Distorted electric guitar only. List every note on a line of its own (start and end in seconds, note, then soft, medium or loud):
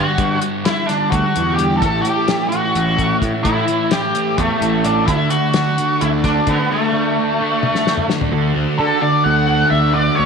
0.00 0.16 G2 medium
0.00 0.17 D3 medium
0.00 0.18 G3 medium
0.17 0.64 G2 medium
0.17 0.41 D3 medium
0.17 0.39 G3 medium
0.40 0.88 D3 soft
0.40 0.86 G3 medium
0.87 1.36 D3 soft
0.87 1.34 G3 medium
1.35 1.58 D3 soft
1.35 1.59 G3 medium
1.57 1.80 G2 medium
1.57 1.80 D3 medium
1.57 1.81 G3 medium
1.81 3.21 A2 medium
1.81 2.06 E3 medium
1.81 2.04 A3 medium
2.05 2.52 E3 soft
2.05 2.51 A3 medium
2.51 2.98 E3 soft
2.51 2.97 A3 medium
2.98 3.21 E3 medium
2.98 3.23 A3 medium
3.21 3.44 A2 medium
3.21 3.45 E3 medium
3.21 3.47 A3 medium
3.45 3.91 A2 medium
3.45 3.69 E3 medium
3.45 3.68 A3 medium
3.68 4.15 E3 medium
3.68 4.14 A3 medium
4.14 4.62 E3 medium
4.14 4.61 A3 medium
4.61 4.83 E3 medium
4.61 4.85 A3 medium
4.84 5.06 A2 medium
4.84 5.06 E3 medium
4.84 5.07 A3 medium
5.06 6.45 D3 medium
5.06 5.32 A3 medium
5.06 5.30 D4 medium
5.31 5.78 A3 medium
5.31 5.77 D4 medium
5.77 6.24 A3 medium
5.77 6.22 D4 medium
6.23 6.47 A3 medium
6.23 6.48 D4 medium
6.46 6.69 D3 medium
6.46 6.70 A3 medium
6.46 6.71 D4 medium
6.70 7.16 D3 medium
6.70 6.93 A3 medium
6.70 6.91 D4 medium
6.93 7.40 A3 soft
6.93 7.38 D4 medium
7.40 7.86 A3 medium
7.40 7.84 D4 medium
7.86 8.08 A3 medium
7.86 8.09 D4 medium
8.08 8.30 D3 medium
8.08 8.31 A3 medium
8.08 8.31 D4 medium
8.32 9.01 D3 medium
8.55 9.48 F#4 medium
8.79 10.26 D4 medium
9.01 9.94 D3 medium
9.25 9.71 A3 medium
9.48 10.18 F#4 medium
9.72 10.26 A3 medium
9.94 10.26 D3 medium
10.18 10.26 F#4 medium